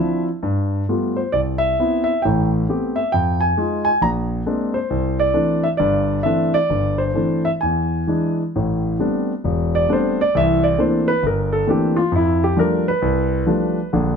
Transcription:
grand piano
Already playing: F3 C4 D4 E4 E5
0.43 G2
0.89 G3 A3 B3 F4
1.16 C5
1.32 C2 D5
1.58 E5
1.79 B3 C4 E4
2.04 E5
2.22 A1 A2 G5
2.69 A3 B3 C4 G4
2.96 E5
3.12 F2 G5
3.40 G#5
3.57 G#3 D#4 F4
3.85 G#5
4.01 A#1 A#5
4.46 G#3 A#3 C4 D4
4.74 C5
4.90 C2
5.19 D5
5.33 E3 A3 C4 D4
5.64 E5
5.77 G1 G2 D5
6.23 E3 A3 C4 D4 E5
6.54 D5
6.70 G1 G2
6.98 C5
7.14 E3 A3 C4 D4
7.45 E5
7.61 E2 G#5
8.07 E3 G#3 D4
8.55 A1 A2
8.99 G3 A3 B3 C4 D4
9.44 E1
9.75 D5
9.89 G3 A3 B3 C4 D4 C5
10.21 D5
10.35 C2 E3 E5
10.64 D5
10.78 E3 A3 A#3 C4 D4 C5
11.08 B4
11.23 G1 A#4
11.53 A4
11.67 E3 A3 A#3 C4 D4 G4
11.96 F4
12.12 F2
12.16 E4
12.44 G4
12.57 F3 G3 A3 D4 A#4
12.88 B4
13.02 C2
13.46 F3 G3 A3 D4
13.93 A#1 D3

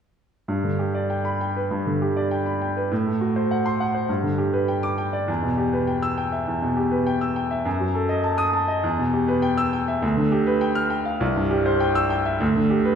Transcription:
grand piano
0.48 G2
0.64 D3
0.79 G4
0.95 D5
1.10 G5
1.25 B5
1.41 G5
1.56 B4
1.71 G2
1.87 D3
2.02 G4
2.17 D5
2.31 G5
2.46 B5
2.62 G5
2.77 B4
2.91 A2
3.06 A3
3.21 F#4
3.36 C5
3.51 F#5
3.66 C6
3.80 F#5
3.95 C5
4.09 G2
4.23 D3
4.38 G4
4.53 B4
4.68 G5
4.83 D6
4.98 G5
5.13 D5
5.28 E2
5.43 B2
5.58 G4
5.73 B4
5.87 G5
6.03 E6
6.18 G5
6.32 E5
6.47 E2
6.62 B2
6.77 G4
6.91 B4
7.07 G5
7.21 E6
7.36 G5
7.51 E5
7.65 F#2
7.80 F#3
7.95 A4
8.09 D#5
8.24 A5
8.38 D#6
8.53 A5
8.68 D#5
8.84 E2
8.99 B2
9.13 G4
9.28 B4
9.42 G5
9.58 E6
9.73 G5
9.88 E5
10.02 D2
10.17 D3
10.32 G4
10.47 B4
10.61 G5
10.75 F6
10.90 G5
11.05 F5
11.20 C2
11.36 G2
11.51 G4
11.66 C5
11.80 G5
11.95 E6
12.10 G5
12.25 E5
12.40 D2
12.55 D3
12.70 G4
12.85 B4

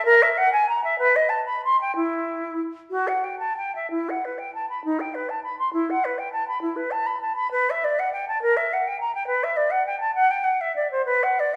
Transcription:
flute
0.05 A#4
0.22 E5
0.37 F#5
0.52 G#5
0.69 A#5
0.84 E5
0.98 B4
1.16 D#5
1.29 A5
1.45 B5
1.64 C6
1.81 G5
1.95 E4
2.90 F#4
3.07 F#5
3.24 G5
3.39 A5
3.57 G5
3.75 E5
3.90 E4
4.09 F#5
4.24 B4
4.38 G5
4.54 A5
4.69 B5
4.84 D#4
5.00 G5
5.14 B4
5.29 A5
5.43 B5
5.59 C6
5.73 E4
5.90 F#5
6.04 B4
6.18 G5
6.32 A5
6.48 B5
6.61 E4
6.76 B4
6.91 A5
7.06 B5
7.21 A5
7.36 B5
7.51 B4
7.70 E5
7.84 D5
7.99 F#5
8.12 G5
8.28 A5
8.42 A#4
8.56 E5
8.73 F#5
8.87 G5
9.00 A#5
9.14 G5
9.27 B4
9.43 E5
9.56 D5
9.70 F#5
9.86 G5
10.00 A5
10.14 F#5
10.30 G5
10.44 F#5
10.61 E5
10.76 D5
10.91 C5
11.05 B4
11.23 F#5
11.39 D5

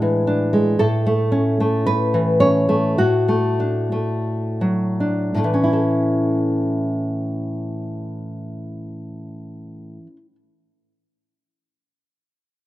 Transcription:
nylon-string guitar
Already playing: A2 G#3 D4 E4
0.02 E3
0.27 D4
0.53 G#3
0.79 A2 A4
1.06 A3
1.32 C#4
1.60 A3
1.86 B4
2.14 E3
2.40 C#4 C#5
2.69 A3
2.98 A2 F#4
3.28 A3
3.60 D4
3.92 A3
4.61 F#3
5.00 D4
5.34 A2 A3
5.44 E3
5.54 C#4
5.64 E4
5.73 A4

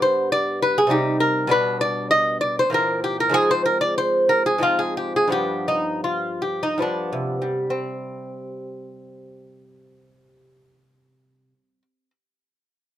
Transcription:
lute
Already playing: G2 G3 B3
0.02 C5
0.32 D5
0.62 B4
0.78 G#4
0.87 C3 G3 D#4 G4
1.20 A#4
1.47 B2 G3 D4 B4
1.81 D5
2.11 D#5
2.41 D5
2.59 C5
2.70 A#2 E3 C4
2.74 A#4
3.04 G4
3.20 A#4
3.29 G#2 F3 C4
3.34 G#4
3.51 C5
3.66 A#4
3.81 D5
3.98 C5
4.29 A#4
4.46 G#4
4.58 G#2 F3 C4
4.63 F4
4.79 G#4
4.97 G4
5.16 G#4
5.28 G2 F3 B3
5.32 G4
5.68 D#4
6.04 F4
6.42 G4
6.63 D#4
6.78 G2 F3 B3
6.82 D4
7.13 C3
7.42 G3
7.70 C4

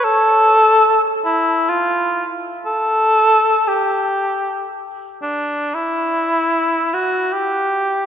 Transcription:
cor anglais
0.04 A4
1.25 E4
1.69 F4
2.66 A4
3.67 G4
5.22 D4
5.74 E4
6.94 F#4
7.33 G4

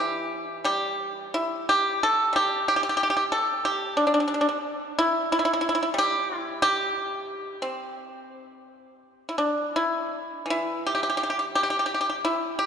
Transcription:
pipa
Already playing: E3
0.00 G4
0.64 G3 G4
1.34 E4
1.69 G4
2.03 A4
2.33 G3 G4
2.68 G4
2.76 G4
2.83 G4
2.89 G4
2.97 G4
3.03 G4
3.10 G4
3.17 G4
3.32 A4
3.65 G4
3.97 D4
4.07 D4
4.14 D4
4.20 D4
4.28 D4
4.34 D4
4.41 D4
4.49 D4
4.99 E4
5.32 E4
5.39 E4
5.45 E4
5.53 E4
5.61 E4
5.69 E4
5.75 E4
5.83 E4
5.94 G3
5.98 G4
6.38 E4
6.62 G4
7.62 C4
9.29 E4
9.38 D4
9.76 E4
10.46 E3
10.50 E4
10.87 G4
10.95 G4
11.03 G4
11.10 G4
11.17 G4
11.23 G4
11.30 G4
11.39 G4
11.55 G4
11.63 G4
11.70 G4
11.79 G4
11.86 G4
11.94 G4
12.01 G4
12.10 G4
12.25 E4
12.59 G4

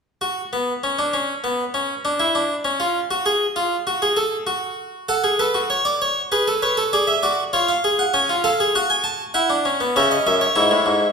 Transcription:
harpsichord
0.21 F#4
0.53 B3
0.84 C#4
0.99 D4
1.13 C#4
1.44 B3
1.74 C#4
2.05 D4
2.20 E4
2.35 D4
2.65 C#4
2.80 F4
3.11 F#4
3.26 G#4
3.56 F4
3.87 F#4
4.02 G#4
4.17 A4
4.47 F#4
5.09 A4 F#5
5.24 G#4
5.39 A4 B4
5.54 F#4
5.70 C#5
5.85 D5
6.02 C#5
6.32 G#4 B4
6.48 A4
6.62 B4 C#5
6.77 A4
6.93 G#4 D5
7.07 E5
7.23 F#4 D5
7.53 F4 C#5
7.68 F5
7.84 G#4
7.99 F#5
8.14 C#4 G#5
8.29 F4
8.44 A4 F5
8.60 G#4
8.75 F#4 F#5
8.90 G#5
9.04 A5
9.34 E4 F#5
9.50 D4
9.65 C#4
9.80 B3
9.96 C#3 C#4 E5
10.11 D#5
10.27 F#2 E5
10.41 C#5
10.56 G#2 E4
10.71 A2
10.86 G#2

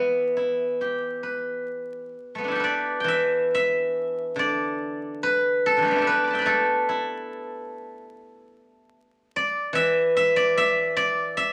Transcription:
guzheng
Already playing: E3 B3 D5 E5
0.37 E4
0.81 G4
1.23 B4
2.35 A3 B3
2.44 D4
2.48 E4 G4
2.55 A4
2.60 B4 D5
3.00 E3 G5
3.08 E5
3.55 E5
4.36 D3 D5
5.23 B4
5.66 A4
5.77 D3 E3
5.82 G3 A3
5.88 B3 D4
5.96 E4 G4
6.02 A4
6.07 B4
6.24 B5 D6
6.30 G5 A5
6.35 D5 E5
6.41 B4
6.46 A3 A4
6.89 E4
9.36 D5
9.73 E3 E5
10.17 E5
10.36 D5
10.57 E5
10.97 D5
11.37 E5

